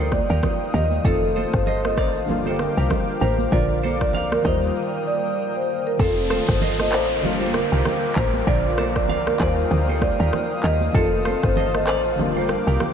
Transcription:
Already playing: D2 G3 A#3 D#4 F4 A#4 F5 G5 D#6
0.00 A4
0.12 D5, kick, cross-stick, high conga, shaker
0.29 D#2 G4 A#4, shaker
0.43 kick, cross-stick, high conga, low conga, shaker
0.74 D#2 G4 A#4 D#5, high conga, low conga, shaker
0.91 high conga, shaker
1.02 F1 D#3 A3 C4 F4 A4 C5 A5, kick, shaker
1.07 F4
1.35 A4 C5, high conga, shaker
1.53 G1 C5, kick, cross-stick, shaker
1.66 C5 D#5, low conga, shaker
1.85 D#5, cross-stick, high conga
1.97 A1 A#4 C5 D5, kick, cross-stick, shaker
2.15 shaker
2.26 G1 D3 G3 A#3 A#4 G5 D6, low conga, shaker
2.31 F4
2.46 A4 C5, high conga
2.59 A#4, cross-stick, high conga, shaker
2.77 C2 G4 A#4, shaker
2.90 kick, cross-stick, high conga, low conga, shaker
3.21 A1 G4 A#4 C5, high conga, low conga, shaker
3.38 high conga, shaker
3.51 A#1 C#3 F3 A#3 F4 A#4 D5 D6, kick, shaker
3.57 D3
3.83 A4 C5, high conga, shaker
4.01 C2 D5, kick, cross-stick, shaker
4.13 D5 F5, low conga, shaker
4.32 A#4, cross-stick, high conga
4.42 D#2 D#3 F3 A#3 A#4 C5 D#5 G5 D#6, kick, cross-stick, shaker
4.48 G3 F4
4.63 shaker
5.07 D5
5.56 C5
5.87 A#4
5.97 F1 D#3 A3 C4 F4 A4 C5 F5 A5 D#6, kick, downlifter, shaker
6.02 F4
6.30 A4 C5, cross-stick, high conga, shaker
6.48 G1 C5, kick, cross-stick, shaker
6.61 C5 D#5, low conga, shaker
6.79 D#5, cross-stick, high conga
6.92 A1 A#4 C5 D5, cross-stick, clap, open hi-hat, shaker
7.10 shaker
7.21 G1 D3 G3 A#3 A#4 G5 D6, low conga, shaker
7.26 F4
7.41 A4 C5, high conga
7.54 A#4, cross-stick, high conga, shaker
7.72 C2 G4 A#4, shaker
7.85 cross-stick, high conga, low conga, shaker
8.16 A1 G4 A#4 C5, kick, clap, high conga, shaker
8.33 high conga, shaker
8.46 A#1 D3 F3 A#3 F4 A#4 D5, kick, shaker
8.78 A4 C5, cross-stick, high conga, shaker
8.96 C2 D5, kick, cross-stick, shaker
9.08 D5 F5, low conga, shaker
9.27 A#4, cross-stick, high conga
9.37 D#2 G3 A#3 D#4 A#4 C5 D5 G5 D#6, kick, cross-stick, clap, open hi-hat, shaker
9.42 F4
9.58 shaker
9.71 D2, low conga, shaker
9.88 A4 C5, high conga
10.02 D5, kick, cross-stick, high conga, shaker
10.19 D#2 G4 A#4, shaker
10.33 cross-stick, high conga, low conga, shaker
10.63 D#2 G4 A#4 D#5, clap, high conga, shaker
10.81 high conga, shaker
10.92 F1 D#3 G3 C4 F4 A4 C5 A5, kick, shaker
10.97 A3 F4
11.25 A4 C5, cross-stick, high conga, shaker
11.43 G1 C5, kick, cross-stick, shaker
11.56 C5 D#5, low conga, shaker
11.74 D#5, cross-stick, high conga
11.87 A1 A#4 C5 D5, cross-stick, clap, open hi-hat, shaker
12.05 shaker
12.16 G1 D3 G3 A#3 A#4 G5 D6, low conga, shaker
12.21 F4
12.36 A4 C5, high conga
12.49 A#4, cross-stick, high conga, shaker
12.67 C2 G4 A#4, shaker
12.80 cross-stick, high conga, low conga, shaker

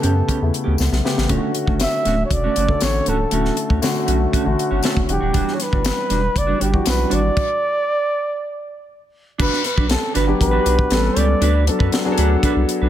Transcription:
Already playing: C#3 A3 B3 G4
0.02 F#2 B3 C#4 G4 A4, closed hi-hat
0.15 muted clean electric guitar stroke
0.28 B3 C#4 G4, kick, closed hi-hat
0.41 E2 C#3 A3 B3 E4, muted clean electric guitar stroke
0.53 muted clean electric guitar stroke, closed hi-hat
0.64 D2 B3 C#4 G4
0.77 C#2, muted clean electric guitar stroke, snare, tambourine
0.90 B1, muted clean electric guitar stroke, snare
1.04 C#3 A3 B3 G4, snare
1.15 A1, muted clean electric guitar stroke, snare
1.28 D1 D3 A3 C#4 F4 F#4, kick, closed hi-hat
1.38 F#4
1.54 muted clean electric guitar stroke, closed hi-hat
1.66 F#1 A3 C#4 F#4, kick
1.80 E5, muted clean electric guitar stroke, snare, closed hi-hat, tambourine
1.93 muted clean electric guitar stroke
2.05 D1 A3 C#4 F#4, snare, closed hi-hat
2.18 muted clean electric guitar stroke
2.25 C#5
2.31 E1 D5, muted clean electric guitar stroke, kick, closed hi-hat
2.44 A3 C#4 F#4
2.56 F#1 A3 C#4 F#4, closed hi-hat
2.69 D3 A3 C#4 A4, muted clean electric guitar stroke, kick
2.81 A1 C#5, muted clean electric guitar stroke, snare, closed hi-hat, tambourine
2.94 muted clean electric guitar stroke
3.06 C#1 A3 C#4 F#4 A4, closed hi-hat
3.20 muted clean electric guitar stroke
3.31 D1 D3 A3 C#4 E4 F#4, closed hi-hat
3.45 snare
3.57 muted clean electric guitar stroke, closed hi-hat
3.69 D2 A3 C#4 F#4, kick
3.82 D3 A3 C#4 F#4, muted clean electric guitar stroke, snare, closed hi-hat, tambourine
3.94 muted clean electric guitar stroke
4.07 B1 A3 C#4 F#4, closed hi-hat
4.20 muted clean electric guitar stroke
4.32 A3 C#4 F#4, kick, closed hi-hat
4.45 A1 D3 A3 C#4 F#4, muted clean electric guitar stroke
4.58 muted clean electric guitar stroke, closed hi-hat
4.71 G1 A3 C#4 F#4
4.83 A3 C#4 A4, snare, closed hi-hat, tambourine
4.96 F#1, muted clean electric guitar stroke, kick
5.08 E1 E3 F#3 D4 G4 F#5, muted clean electric guitar stroke, closed hi-hat
5.15 G3
5.21 D#1 G3 D4 F#4
5.33 E1 G3 D4 F#4, kick, closed hi-hat
5.48 snare
5.54 C#5
5.60 B4, snare, closed hi-hat
5.72 G1 G3 D4 F#4, kick
5.84 muted clean electric guitar stroke, snare, closed hi-hat, tambourine
5.97 muted clean electric guitar stroke
6.09 E1 G3 D4 F#4, snare, closed hi-hat
6.22 muted clean electric guitar stroke
6.35 F#1 D5, muted clean electric guitar stroke, kick, closed hi-hat
6.47 G3 D4 F#4
6.59 G1 G3 D4 F#4 G4, closed hi-hat
6.72 E3 G3 D4 F#4, muted clean electric guitar stroke, kick
6.84 B1 B4, muted clean electric guitar stroke, snare, closed hi-hat, tambourine
6.97 muted clean electric guitar stroke
7.09 G#1 G3 D4 F#4 D5, closed hi-hat
7.22 muted clean electric guitar stroke
7.37 kick, crash
9.38 G1 D4 F#4 B4, kick, crash
9.53 snare
9.64 B4, muted clean electric guitar stroke, snare, closed hi-hat
9.76 B1 D4 F#4 B4, kick
9.89 A4, muted clean electric guitar stroke, snare, closed hi-hat
10.02 muted clean electric guitar stroke
10.14 G1 D4 F#4 B4, snare, closed hi-hat
10.27 F#3 B3 D4 G4, muted clean electric guitar stroke
10.40 A1 B4, muted clean electric guitar stroke, kick, closed hi-hat
10.51 B3 D4 F#4 B4
10.60 G4
10.64 B1 D4 F#4 B4, closed hi-hat
10.78 muted clean electric guitar stroke, kick
10.91 A1 G3 B3 C#4 A4, muted clean electric guitar stroke, snare, closed hi-hat
11.04 muted clean electric guitar stroke
11.16 C#2 C#4 G4 B4 D5, closed hi-hat
11.28 muted clean electric guitar stroke
11.41 D2 D4 F#4 B4, closed hi-hat
11.67 F#3 B3 D4 A4, muted clean electric guitar stroke, closed hi-hat
11.79 F#2 D4 F#4 B4, kick
11.92 muted clean electric guitar stroke, snare, closed hi-hat
12.05 F#3 B3 D4 G#4, muted clean electric guitar stroke
12.12 A4
12.18 D2 D4 F#4 B4, closed hi-hat
12.31 muted clean electric guitar stroke
12.43 D4 F#4 B4, kick, closed hi-hat
12.56 C2, muted clean electric guitar stroke
12.69 muted clean electric guitar stroke, closed hi-hat
12.82 B1 D4 F#4 B4

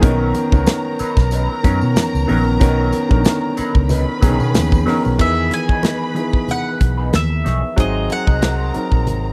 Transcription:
0.01 B1 D#3 F#3 B3 C#4 D#4 A#4 A#5, kick, closed hi-hat, tambourine, muted conga
0.35 closed hi-hat, tambourine, muted conga
0.52 C#2 D#3 B3 C#4 A#4, muted clean electric guitar stroke, kick, tambourine
0.66 muted clean electric guitar stroke, snare, closed hi-hat, tambourine, high conga
0.99 F#3 C#4 D#4 B4, muted fingered electric bass stroke, closed hi-hat, tambourine
1.17 B1, muted clean electric guitar stroke, kick, snare, tambourine
1.31 F#3 C#4 D#4 B4, closed hi-hat, tambourine
1.49 muted clean electric guitar stroke
1.63 F#2 D#3 F#3 B3 C#4 D#4 A#4, kick, closed hi-hat, tambourine, muted conga
1.81 B2, muted clean electric guitar stroke, tambourine
1.96 snare, closed hi-hat, tambourine, high conga
2.13 C#2, muted clean electric guitar stroke, tambourine
2.27 A#1 D#3 F#3 B3 C#4 D#4 A#4, open hi-hat, high conga
2.46 muted clean electric guitar stroke
2.60 B1 D#3 F#3 B3 C#4 D#4 A#4, kick, closed hi-hat, tambourine, muted conga
2.92 closed hi-hat, tambourine, muted conga
3.09 A#1 D3 B3 C#4 A#4, muted clean electric guitar stroke, kick
3.16 D#3
3.24 muted clean electric guitar stroke, snare, closed hi-hat, tambourine, high conga
3.57 F#3 C#4 D#4 B4, muted fingered electric bass stroke, closed hi-hat, tambourine
3.74 C#2, muted clean electric guitar stroke, kick
3.89 F#3 C#4 D#4 B4 B5, closed hi-hat, tambourine, low conga
4.07 muted clean electric guitar stroke
4.21 B1 C#3 F#3 B3 C#4 D#4 G#4 A#4, kick, closed hi-hat, tambourine, muted conga, low conga
4.28 D#3
4.39 B2, muted clean electric guitar stroke, tambourine
4.54 D#2, snare, closed hi-hat, tambourine, high conga
4.71 muted clean electric guitar stroke, kick, tambourine, high conga
4.86 D#3 F#3 B3 C#4 D#4 A#4, snare, open hi-hat, high conga
5.04 B1, muted clean electric guitar stroke, tambourine
5.18 E2 D#3 E3 B3 D#4 G#4 B4 E5 B5, kick, crash
5.36 muted clean electric guitar stroke
5.50 G#5, muted clean electric guitar stroke, closed hi-hat, muted conga
5.68 B3 D#4 G#4 C#5, kick
5.83 B3 D#4 G#4 B4, snare, closed hi-hat, high conga
6.14 E3 B3 D#4 G#4, muted clean electric guitar stroke, closed hi-hat
6.33 muted clean electric guitar stroke, kick
6.48 F#5, muted clean electric guitar stroke, closed hi-hat, low conga
6.65 muted clean electric guitar stroke
6.81 B1, kick, closed hi-hat, muted conga
6.97 B3 D#4 G#4 B4
7.12 D#2 E5, muted clean electric guitar stroke, snare, closed hi-hat, high conga
7.30 muted clean electric guitar stroke
7.44 B1 B3 D#4 G#4 C#5, snare, closed hi-hat, high conga
7.62 muted clean electric guitar stroke
7.76 G#1 F#3 G#3 C4 D#4 F#4 G#4 A#4 C5 D#5 A#5, kick, closed hi-hat, muted conga
7.94 muted clean electric guitar stroke
8.09 F#5, muted clean electric guitar stroke, closed hi-hat, muted conga
8.27 C2 G#3 D#4 F#4 D#5, kick
8.41 G#3 D#4 F#4 C5, snare, closed hi-hat, high conga
8.74 F#3 C4 D#4 A#4, muted clean electric guitar stroke, muted fingered electric bass stroke, closed hi-hat
8.92 A#1, muted clean electric guitar stroke, kick
9.07 G#1, muted clean electric guitar stroke, closed hi-hat, low conga
9.24 muted clean electric guitar stroke

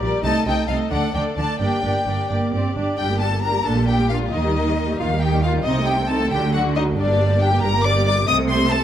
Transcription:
0.01 A#1 A#2 G3 G4 A#4 D5
0.23 C2 C3 A3 D#4 A4 D#5 A5
0.46 C2 C3 A3 D#4 A4 D#5 G5
0.68 C2 C3 A3 D#4 A4 D#5 F5
0.91 D2 D3 A3 D4 A4 D5 F#5
1.14 D2 D3 A3 D4 A4 D5 G5
1.37 D2 D3 A3 D4 A4 D5 A5
1.60 G1 G2 A#3 D4 G4 D5 G5
1.83 G1 G2 A#3 D4 G4 D5
2.06 G1 G2 A#3 D4 G4 D5
2.29 G1 G2 A#3 G4 D5
2.53 G1 G2 C4 G4 D5
2.76 G1 G2 D4 G4 D5
2.97 G1 G2 G3 D4 G4 G5
3.10 A#3 G4
3.19 G3 D4 A4 A5
3.32 A#3 G4
3.42 G3 D4 A#4 A#5
3.55 A#3 G4
3.65 A#1 A#2 A#3 D4 A4 A5
3.77 G3 A#3
3.88 A#3 D4 G4 G5
3.99 G3 A#3
4.09 A#3 D4 F4 F5
4.22 G3 A#3
4.32 D#2 D#3 A#3 D#4 D#5
4.44 G3 G4
4.56 A#3 D#4
4.67 G3 G4
4.77 A#3 D#4
4.89 G3 G4
4.99 D#2 D#3 A#3 D#4 F4 F5
5.10 G3 G4
5.21 A#3 D#4 G4 G5
5.32 G3 G4
5.43 A#3 D#4 F4 F5
5.55 G3 G4
5.65 C2 C3 C4 D#4 D#5
5.77 A3 C4
5.87 C4 D#4 G4 G5
5.99 A3 C4
6.10 C4 D#4 A4 A5
6.22 A3 C4
6.31 D2 D3 F#3 D4 G4 G5
6.44 A3 F#4
6.54 F#3 D4 F#4 F#5
6.65 A3 F#4
6.76 F#3 D4 D#4 D#5
6.87 A3 F#4
6.97 G1 G2 G3 D4 D5
7.09 A#3 G4
7.19 G3 D4
7.30 A#3 G4
7.40 G3 D4 G4 G5
7.51 A#3 G4
7.62 G1 G2 G3 D4 A#4 A#5
7.73 A#3 G4
7.84 G3 D4 D5 D6
7.96 A#3 G4
8.06 G3 D4 D5 D6
8.17 A#3 G4
8.27 C2 C3 A3 C4 D#5 D#6
8.49 C5 C6
8.71 A4 A5

